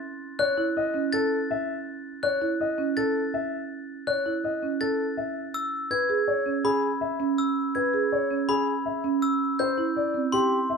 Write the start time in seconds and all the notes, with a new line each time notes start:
0.39 C#5 F#6
0.57 E4
0.77 D#5
0.94 C#4
1.13 A4 A6
1.51 E5
2.23 C#5 F#6
2.41 E4
2.61 D#5
2.78 C#4
2.97 A4 A6
3.34 E5
4.07 C#5 F#6
4.26 E4
4.44 D#5
4.63 C#4
4.81 A4 A6
5.17 E5
5.54 E6
5.91 B4 G#6
6.09 G#4
6.28 C#5
6.46 C#4
6.64 G#4 B5
7.01 E5
7.20 C#4
7.38 E6
7.75 B4 G#6
7.94 G#4
8.12 C#5
8.30 C#4
8.49 G#4 B5
8.86 E5
9.04 C#4
9.22 E6
9.59 C5 G6
9.78 E4
9.97 D5
10.14 C4
10.32 G4 C6
10.70 E5